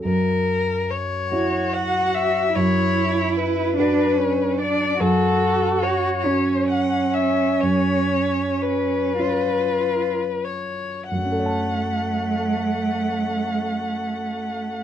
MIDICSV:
0, 0, Header, 1, 4, 480
1, 0, Start_track
1, 0, Key_signature, 3, "minor"
1, 0, Tempo, 847458
1, 22, Time_signature, 6, 3, 24, 8
1, 981, Tempo, 820793
1, 3381, Tempo, 859599
1, 3861, Tempo, 927357
1, 4341, Tempo, 1015228
1, 4821, Tempo, 1153846
1, 5301, Tempo, 1315789
1, 5781, Tempo, 1239669
1, 6741, Tempo, 1293103
1, 7204, End_track
2, 0, Start_track
2, 0, Title_t, "Violin"
2, 0, Program_c, 0, 40
2, 28, Note_on_c, 0, 70, 65
2, 511, Note_on_c, 0, 73, 59
2, 520, Note_off_c, 0, 70, 0
2, 982, Note_on_c, 0, 78, 63
2, 990, Note_off_c, 0, 73, 0
2, 1222, Note_on_c, 0, 76, 65
2, 1230, Note_off_c, 0, 78, 0
2, 1464, Note_on_c, 0, 73, 69
2, 1472, Note_off_c, 0, 76, 0
2, 1942, Note_on_c, 0, 71, 58
2, 1951, Note_off_c, 0, 73, 0
2, 2654, Note_off_c, 0, 71, 0
2, 2658, Note_on_c, 0, 74, 69
2, 2895, Note_on_c, 0, 69, 69
2, 2904, Note_off_c, 0, 74, 0
2, 3379, Note_on_c, 0, 73, 67
2, 3388, Note_off_c, 0, 69, 0
2, 3854, Note_off_c, 0, 73, 0
2, 3858, Note_on_c, 0, 78, 63
2, 4093, Note_on_c, 0, 76, 60
2, 4101, Note_off_c, 0, 78, 0
2, 4333, Note_on_c, 0, 73, 60
2, 4341, Note_off_c, 0, 76, 0
2, 4814, Note_on_c, 0, 71, 54
2, 4821, Note_off_c, 0, 73, 0
2, 5538, Note_on_c, 0, 73, 38
2, 5543, Note_off_c, 0, 71, 0
2, 5775, Note_off_c, 0, 73, 0
2, 5777, Note_on_c, 0, 78, 40
2, 7204, Note_off_c, 0, 78, 0
2, 7204, End_track
3, 0, Start_track
3, 0, Title_t, "Grand piano"
3, 0, Program_c, 1, 0
3, 0, Control_c, 1, 64, 127
3, 26, Note_on_c, 1, 42, 45
3, 32, Control_c, 1, 64, 0
3, 145, Control_c, 1, 64, 127
3, 727, Note_off_c, 1, 42, 0
3, 747, Note_on_c, 1, 64, 33
3, 750, Note_on_c, 1, 66, 34
3, 752, Note_on_c, 1, 73, 35
3, 1439, Note_off_c, 1, 64, 0
3, 1441, Note_off_c, 1, 66, 0
3, 1442, Note_off_c, 1, 73, 0
3, 1464, Note_on_c, 1, 42, 48
3, 1474, Control_c, 1, 64, 0
3, 1580, Control_c, 1, 64, 127
3, 2164, Note_off_c, 1, 42, 0
3, 2182, Note_on_c, 1, 62, 36
3, 2183, Note_on_c, 1, 66, 37
3, 2189, Note_on_c, 1, 71, 37
3, 2874, Note_off_c, 1, 62, 0
3, 2875, Note_off_c, 1, 66, 0
3, 2877, Note_off_c, 1, 71, 0
3, 2895, Note_on_c, 1, 42, 54
3, 2910, Control_c, 1, 64, 0
3, 2989, Control_c, 1, 64, 127
3, 3593, Note_off_c, 1, 42, 0
3, 3611, Note_on_c, 1, 61, 33
3, 3612, Note_on_c, 1, 66, 34
3, 3615, Note_on_c, 1, 73, 35
3, 4316, Note_off_c, 1, 61, 0
3, 4317, Note_off_c, 1, 66, 0
3, 4318, Note_off_c, 1, 73, 0
3, 4342, Note_on_c, 1, 42, 41
3, 4350, Control_c, 1, 64, 0
3, 4441, Control_c, 1, 64, 127
3, 5034, Note_off_c, 1, 42, 0
3, 5050, Note_on_c, 1, 61, 24
3, 5052, Note_on_c, 1, 65, 24
3, 5055, Note_on_c, 1, 73, 28
3, 5766, Note_off_c, 1, 61, 0
3, 5767, Note_off_c, 1, 65, 0
3, 5768, Note_off_c, 1, 73, 0
3, 5782, Note_on_c, 1, 42, 28
3, 5790, Control_c, 1, 64, 0
3, 5808, Note_on_c, 1, 54, 26
3, 5835, Note_on_c, 1, 61, 26
3, 5863, Note_on_c, 1, 69, 27
3, 5886, Control_c, 1, 64, 127
3, 5891, Note_on_c, 1, 73, 28
3, 5917, Note_on_c, 1, 81, 29
3, 7204, Note_off_c, 1, 42, 0
3, 7204, Note_off_c, 1, 54, 0
3, 7204, Note_off_c, 1, 61, 0
3, 7204, Note_off_c, 1, 69, 0
3, 7204, Note_off_c, 1, 73, 0
3, 7204, Note_off_c, 1, 81, 0
3, 7204, End_track
4, 0, Start_track
4, 0, Title_t, "Cello"
4, 0, Program_c, 2, 42
4, 743, Note_on_c, 2, 66, 51
4, 1437, Note_off_c, 2, 66, 0
4, 1452, Note_on_c, 2, 64, 58
4, 2165, Note_off_c, 2, 64, 0
4, 2171, Note_on_c, 2, 62, 49
4, 2406, Note_on_c, 2, 61, 48
4, 2415, Note_off_c, 2, 62, 0
4, 2646, Note_on_c, 2, 62, 51
4, 2655, Note_off_c, 2, 61, 0
4, 2881, Note_off_c, 2, 62, 0
4, 2885, Note_on_c, 2, 66, 61
4, 3611, Note_on_c, 2, 61, 55
4, 3619, Note_off_c, 2, 66, 0
4, 5048, Note_off_c, 2, 61, 0
4, 5051, Note_on_c, 2, 65, 35
4, 5412, Note_off_c, 2, 65, 0
4, 5781, Note_on_c, 2, 57, 33
4, 7204, Note_off_c, 2, 57, 0
4, 7204, End_track
0, 0, End_of_file